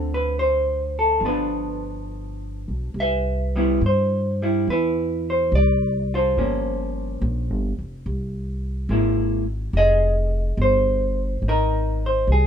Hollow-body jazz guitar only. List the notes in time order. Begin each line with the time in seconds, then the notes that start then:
Already playing: D3 C4 F4 A4
0.14 B4
0.39 C5
0.99 A4
1.20 F3
1.25 B3 D4 F4 B4
3.00 B4 E5
3.56 G3 B3 E4
3.86 C5
4.42 G3 E4
4.70 E4 B4
5.30 C5
5.55 D5
6.14 F4 C5
6.38 F3 A#3 C#4
8.90 G#3 A#3 E4
9.77 G#4 D#5
10.62 C5
11.48 D#4 A#4
12.06 C5
12.32 G#4